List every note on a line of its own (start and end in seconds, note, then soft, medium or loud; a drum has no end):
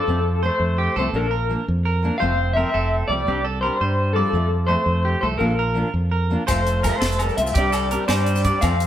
0.00 0.41 F3 medium
0.00 0.41 A4 medium
0.00 0.23 D5 medium
0.08 0.48 F2 loud
0.08 0.18 F3 medium
0.08 0.19 A3 medium
0.08 0.19 C4 medium
0.43 0.54 A3 medium
0.43 0.94 A3 medium
0.43 0.77 C5 medium
0.43 0.94 C5 medium
0.43 muted steel-string acoustic guitar stroke medium
0.60 0.87 F2 medium
0.78 0.95 G4 medium
0.96 1.10 C2 medium
0.96 1.07 F3 medium
0.96 1.08 A3 medium
0.96 1.07 A3 medium
0.96 1.09 C4 medium
0.96 1.30 A4 medium
0.96 1.04 C5 medium
1.13 1.55 A#1 medium
1.13 1.25 F3 medium
1.13 1.53 F3 medium
1.13 1.25 A#3 medium
1.13 1.25 D4 medium
1.13 1.52 A#4 medium
1.31 1.65 A#4 medium
1.49 1.60 F3 medium
1.49 1.61 A#3 medium
1.49 1.62 D4 medium
1.68 2.09 F2 loud
1.85 2.19 A#4 medium
2.02 2.14 F3 medium
2.02 2.14 A#3 medium
2.02 2.15 D4 medium
2.18 2.31 F3 medium
2.18 2.32 A3 medium
2.18 2.54 C4 medium
2.18 2.54 C5 loud
2.18 2.52 F5 loud
2.22 2.63 F1 loud
2.22 2.32 C4 medium
2.53 2.66 F3 medium
2.53 2.68 A3 medium
2.53 3.05 C4 loud
2.53 2.74 A#4 medium
2.53 3.05 E5 loud
2.58 2.68 C4 medium
2.74 3.02 F1 medium
2.74 3.08 A4 medium
3.07 3.23 C2 medium
3.07 3.20 F3 medium
3.07 3.42 G3 medium
3.07 3.21 A3 medium
3.07 3.42 D5 loud
3.13 3.22 C4 medium
3.27 3.69 C2 medium
3.27 3.38 G3 medium
3.27 3.39 C4 medium
3.27 3.39 D4 medium
3.27 3.45 G4 medium
3.45 3.62 A4 medium
3.61 4.12 G3 medium
3.61 3.74 G3 medium
3.61 3.75 C4 medium
3.61 3.80 A#4 medium
3.61 4.17 C5 medium
3.66 3.75 D4 medium
3.81 4.22 G2 medium
3.81 4.15 C5 medium
4.13 4.66 F3 medium
4.13 4.27 G3 medium
4.13 4.70 A4 medium
4.13 4.50 D5 medium
4.17 4.28 C4 medium
4.17 4.28 D4 medium
4.33 4.75 F2 loud
4.33 4.45 F3 medium
4.33 4.46 A3 medium
4.33 muted steel-string acoustic guitar stroke medium
4.67 4.80 F3 medium
4.67 5.19 A3 medium
4.67 4.81 A3 medium
4.67 5.20 C5 medium
4.67 5.03 C5 medium
4.71 4.82 C4 medium
4.86 5.14 F2 medium
5.05 5.22 G4 medium
5.21 5.37 C2 medium
5.21 5.33 F3 medium
5.21 5.34 A3 medium
5.21 5.33 A3 medium
5.21 5.57 A4 medium
5.21 5.26 C5 medium
5.38 5.82 A#1 medium
5.38 5.51 F3 medium
5.38 5.52 A#3 medium
5.38 5.52 D4 medium
5.38 5.52 F4 medium
5.38 5.77 A#4 medium
5.42 5.79 F3 medium
5.59 5.93 A#4 medium
5.74 5.86 F3 medium
5.74 5.87 A#3 medium
5.74 5.88 D4 medium
5.74 5.88 F4 medium
5.94 6.35 F2 medium
6.11 6.46 A#4 medium
6.30 6.41 F3 medium
6.30 6.42 A#3 medium
6.30 6.42 D4 medium
6.30 6.43 F4 medium
6.47 6.90 F1 loud
6.47 6.59 A3 medium
6.47 6.59 C4 medium
6.47 7.55 C4 medium
6.47 6.60 F4 medium
6.47 6.82 C5 medium
6.47 6.85 C5 medium
6.47 kick medium
6.47 closed hi-hat medium
6.47 low agogo medium
6.47 maracas medium
6.52 6.84 A3 medium
6.52 7.57 F4 medium
6.52 7.57 A4 medium
6.67 closed hi-hat soft
6.83 6.95 A3 medium
6.83 6.96 C4 medium
6.83 6.96 F4 medium
6.83 7.00 A#4 medium
6.83 7.37 C5 medium
6.83 kick medium
6.83 closed hi-hat medium
6.83 low agogo medium
6.83 maracas medium
6.87 7.36 A3 medium
7.01 7.29 F1 medium
7.01 7.35 A4 medium
7.01 snare medium
7.01 closed hi-hat medium
7.12 maracas medium
7.19 closed hi-hat soft
7.19 low agogo medium
7.19 maracas soft
7.29 maracas soft
7.37 7.52 C2 medium
7.37 7.49 A3 medium
7.37 7.56 C4 medium
7.37 7.50 C4 medium
7.37 7.56 E5 medium
7.37 closed hi-hat medium
7.41 7.50 F4 medium
7.47 maracas medium
7.54 7.96 C2 medium
7.54 8.07 G3 medium
7.54 8.87 C4 medium
7.54 7.67 C4 medium
7.54 8.63 D4 medium
7.54 7.68 D4 medium
7.54 7.72 G4 medium
7.54 8.62 G4 medium
7.54 8.07 D5 medium
7.54 kick loud
7.54 closed hi-hat medium
7.54 maracas soft
7.59 7.68 G4 medium
7.72 7.90 A4 medium
7.72 closed hi-hat soft
7.72 low agogo medium
7.72 maracas medium
7.91 8.02 C4 medium
7.91 8.03 D4 medium
7.91 8.03 G4 medium
7.91 8.08 A#4 medium
7.91 closed hi-hat soft
8.08 8.50 G2 medium
8.08 8.60 G3 medium
8.08 8.43 C5 medium
8.08 8.61 D5 medium
8.08 snare medium
8.08 closed hi-hat medium
8.08 low agogo medium
8.08 maracas medium
8.26 closed hi-hat medium
8.36 maracas medium
8.44 8.55 C4 medium
8.44 8.56 D4 medium
8.44 8.57 G4 medium
8.44 8.79 D5 medium
8.44 kick medium
8.44 closed hi-hat soft
8.61 8.87 F2 loud
8.61 8.73 A3 medium
8.61 8.73 C4 medium
8.61 8.87 C4 medium
8.61 8.87 F4 medium
8.61 8.74 F4 medium
8.61 8.87 A4 medium
8.61 8.87 F5 loud
8.61 kick medium
8.61 closed hi-hat medium
8.61 low agogo medium
8.61 maracas medium
8.80 closed hi-hat soft